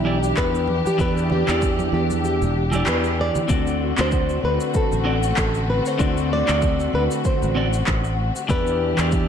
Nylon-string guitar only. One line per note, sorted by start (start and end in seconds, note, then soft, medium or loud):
0.00 0.23 E4 medium
0.23 0.39 D4 medium
0.38 0.83 B4 medium
0.87 1.00 G4 medium
1.01 1.29 B4 loud
1.32 1.93 G4 medium
1.94 2.02 G4 medium
2.25 3.15 G4 medium
2.89 2.97 B4 medium
3.21 3.96 D5 loud
4.01 4.44 C5 loud
4.45 4.73 B4 medium
4.76 5.37 A4 medium
5.39 5.70 A4 medium
5.70 5.87 B4 medium
5.87 6.31 C5 medium
6.33 6.90 D5 loud
6.95 7.03 B4 medium
7.26 8.15 C5 medium
8.50 9.08 B4 loud